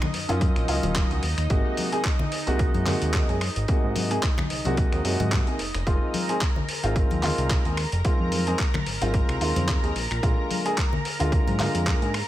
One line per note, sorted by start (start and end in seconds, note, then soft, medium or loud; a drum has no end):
0.00 5.88 D#4 medium
0.00 5.88 D#5 medium
0.00 finger snap medium
0.00 high conga medium
0.00 low conga medium
0.14 0.26 F#2 soft
0.14 open hi-hat medium
0.28 0.50 F#2 medium
0.28 0.65 D#3 medium
0.28 0.65 F#3 medium
0.28 0.66 C#4 medium
0.28 0.66 F4 loud
0.28 closed hi-hat medium
0.28 high conga medium
0.41 kick loud
0.41 closed hi-hat medium
0.56 0.66 A#1 medium
0.56 finger snap medium
0.56 closed hi-hat soft
0.68 0.80 C#2 medium
0.68 1.07 D#3 medium
0.68 1.07 F#3 medium
0.68 1.07 C#4 medium
0.68 1.07 F4 loud
0.68 open hi-hat loud
0.83 1.04 D#1 loud
0.83 closed hi-hat medium
0.83 high conga medium
0.83 low conga medium
0.96 kick loud
0.96 clap loud
0.96 closed hi-hat medium
1.10 1.20 C#2 medium
1.10 1.19 D#3 medium
1.10 1.19 F#3 medium
1.10 1.19 C#4 medium
1.10 1.19 F#4 medium
1.10 closed hi-hat soft
1.23 1.35 D#2 medium
1.23 open hi-hat medium
1.38 1.47 D#2 medium
1.38 finger snap medium
1.38 closed hi-hat soft
1.50 1.62 G#1 loud
1.50 1.89 C3 medium
1.50 1.89 G#3 medium
1.50 1.89 A#3 medium
1.50 1.89 F#4 medium
1.50 kick loud
1.50 closed hi-hat medium
1.77 open hi-hat loud
1.77 high conga medium
1.92 2.00 C3 medium
1.92 2.01 G#3 medium
1.92 2.01 A#3 medium
1.92 2.01 G#4 loud
1.92 closed hi-hat soft
2.05 kick loud
2.05 clap loud
2.05 closed hi-hat medium
2.19 low conga medium
2.32 open hi-hat medium
2.46 2.68 C2 medium
2.46 2.83 C3 medium
2.46 2.84 G#3 medium
2.46 2.84 A#3 medium
2.46 2.84 F#4 loud
2.46 closed hi-hat soft
2.59 kick loud
2.59 closed hi-hat medium
2.74 2.95 F#2 loud
2.74 closed hi-hat soft
2.74 high conga medium
2.86 3.25 C3 medium
2.86 3.25 G#3 medium
2.86 3.25 A#3 medium
2.86 3.26 F#4 loud
2.86 clap medium
2.86 open hi-hat loud
2.86 low conga medium
3.02 3.22 D#2 medium
3.02 closed hi-hat soft
3.14 kick loud
3.14 clap loud
3.14 closed hi-hat medium
3.28 3.49 F#2 medium
3.28 3.37 C3 medium
3.28 3.37 G#3 medium
3.28 3.37 A#3 medium
3.28 3.37 G#4 medium
3.28 closed hi-hat soft
3.41 finger snap medium
3.41 open hi-hat medium
3.56 3.66 G#1 medium
3.56 closed hi-hat soft
3.68 4.07 C3 medium
3.68 4.07 G#3 medium
3.68 4.07 A#3 medium
3.68 4.08 F#4 medium
3.68 kick loud
3.68 closed hi-hat medium
3.83 4.19 G#2 medium
3.96 open hi-hat loud
3.96 high conga medium
4.10 4.19 C3 medium
4.10 4.19 G#3 medium
4.10 4.19 A#3 medium
4.10 4.19 G#4 medium
4.10 closed hi-hat soft
4.23 kick loud
4.23 clap loud
4.23 closed hi-hat medium
4.38 finger snap medium
4.38 high conga medium
4.38 low conga medium
4.50 4.62 C2 soft
4.50 open hi-hat medium
4.65 4.86 C2 medium
4.65 5.02 C3 medium
4.65 5.02 G#3 medium
4.65 5.02 A#3 medium
4.65 5.02 F#4 loud
4.65 closed hi-hat soft
4.65 high conga medium
4.77 kick loud
4.77 closed hi-hat medium
4.92 5.02 D#2 medium
4.92 finger snap medium
4.92 closed hi-hat soft
5.04 5.17 F#2 medium
5.04 5.43 C3 medium
5.04 5.44 G#3 medium
5.04 5.44 A#3 medium
5.04 5.44 F#4 medium
5.04 open hi-hat loud
5.20 5.41 G#2 loud
5.20 closed hi-hat soft
5.20 high conga medium
5.20 low conga medium
5.32 kick loud
5.32 clap loud
5.32 closed hi-hat medium
5.47 5.55 C3 medium
5.47 5.55 G#3 medium
5.47 5.56 A#3 medium
5.47 5.56 G#4 medium
5.47 closed hi-hat soft
5.59 5.72 F1 soft
5.59 open hi-hat medium
5.74 5.84 F1 medium
5.74 finger snap medium
5.74 closed hi-hat soft
5.86 6.25 D#3 medium
5.86 6.25 G#3 medium
5.86 6.26 C4 medium
5.86 6.26 F4 medium
5.86 12.28 A#4 medium
5.86 12.28 A#5 medium
5.86 kick loud
5.86 closed hi-hat medium
6.14 open hi-hat loud
6.14 high conga medium
6.28 6.37 D#3 medium
6.28 6.37 G#3 medium
6.28 6.37 C4 medium
6.28 6.37 G#4 medium
6.28 closed hi-hat soft
6.41 kick loud
6.41 clap loud
6.41 closed hi-hat medium
6.56 low conga medium
6.69 open hi-hat medium
6.83 7.04 G#1 medium
6.83 7.20 D#3 medium
6.83 7.20 G#3 medium
6.83 7.20 C4 medium
6.83 7.20 F4 loud
6.83 closed hi-hat soft
6.96 kick loud
6.96 closed hi-hat medium
7.11 7.31 D#2 medium
7.11 closed hi-hat soft
7.11 high conga medium
7.22 7.62 D#3 medium
7.22 7.62 G#3 medium
7.22 7.62 C4 medium
7.22 7.62 F4 loud
7.22 clap medium
7.22 open hi-hat loud
7.22 low conga medium
7.38 7.59 C2 medium
7.38 closed hi-hat soft
7.50 kick loud
7.50 clap loud
7.50 closed hi-hat medium
7.65 7.86 D#2 medium
7.65 7.73 D#3 medium
7.65 7.73 G#3 medium
7.65 7.74 C4 medium
7.65 7.74 G#4 medium
7.65 closed hi-hat soft
7.77 finger snap medium
7.77 open hi-hat medium
7.92 8.02 F1 medium
7.92 closed hi-hat soft
8.04 8.17 F2 soft
8.04 8.43 D#3 medium
8.04 8.43 G#3 medium
8.04 8.44 C4 medium
8.04 8.44 F4 medium
8.04 kick loud
8.04 closed hi-hat medium
8.20 8.55 F2 medium
8.32 open hi-hat loud
8.32 high conga medium
8.47 8.55 D#3 medium
8.47 8.55 G#3 medium
8.47 8.55 C4 medium
8.47 8.56 G#4 medium
8.47 closed hi-hat soft
8.59 kick medium
8.59 clap loud
8.59 closed hi-hat medium
8.74 finger snap medium
8.74 high conga medium
8.74 low conga medium
8.86 8.99 G#1 soft
8.86 open hi-hat medium
9.01 9.22 G#1 medium
9.01 9.38 D#3 medium
9.01 9.38 G#3 medium
9.01 9.38 C4 medium
9.01 9.39 F4 loud
9.01 closed hi-hat soft
9.01 high conga medium
9.14 kick loud
9.14 closed hi-hat medium
9.29 9.38 C2 medium
9.29 finger snap medium
9.29 closed hi-hat soft
9.40 9.53 D#2 medium
9.40 9.80 D#3 medium
9.40 9.80 G#3 medium
9.40 9.80 C4 medium
9.40 9.80 F4 loud
9.40 open hi-hat loud
9.56 9.77 F2 medium
9.56 closed hi-hat medium
9.56 high conga medium
9.56 low conga medium
9.68 kick loud
9.68 clap loud
9.68 closed hi-hat medium
9.83 9.93 D#2 loud
9.83 9.91 D#3 medium
9.83 9.91 G#3 medium
9.83 9.92 C4 medium
9.83 9.92 G#4 medium
9.83 closed hi-hat soft
9.96 10.07 A#1 medium
9.96 open hi-hat medium
10.11 10.20 A#1 medium
10.11 finger snap medium
10.11 closed hi-hat soft
10.22 10.61 D3 medium
10.22 10.62 G#3 medium
10.22 10.62 A#3 medium
10.22 10.62 F4 medium
10.22 kick loud
10.22 closed hi-hat medium
10.51 open hi-hat medium
10.51 high conga medium
10.65 10.73 D3 medium
10.65 10.73 G#3 medium
10.65 10.74 A#3 medium
10.65 10.74 G#4 loud
10.65 closed hi-hat medium
10.78 kick medium
10.78 clap loud
10.78 closed hi-hat medium
10.93 low conga medium
11.05 open hi-hat medium
11.19 11.41 D2 medium
11.19 11.56 D3 medium
11.19 11.56 G#3 medium
11.19 11.57 A#3 medium
11.19 11.57 F4 loud
11.19 closed hi-hat medium
11.32 kick loud
11.32 closed hi-hat medium
11.47 11.68 G#2 loud
11.47 closed hi-hat soft
11.47 high conga medium
11.59 11.98 D3 medium
11.59 11.98 G#3 medium
11.59 11.98 A#3 medium
11.59 11.98 F4 loud
11.59 clap medium
11.59 open hi-hat loud
11.59 low conga medium
11.75 11.95 F2 medium
11.75 closed hi-hat medium
11.87 kick medium
11.87 clap loud
11.87 closed hi-hat medium
12.01 12.22 G#2 medium
12.01 12.10 D3 medium
12.01 12.10 G#3 medium
12.01 12.10 A#3 medium
12.01 12.10 G#4 medium
12.01 closed hi-hat soft
12.14 finger snap medium
12.14 open hi-hat medium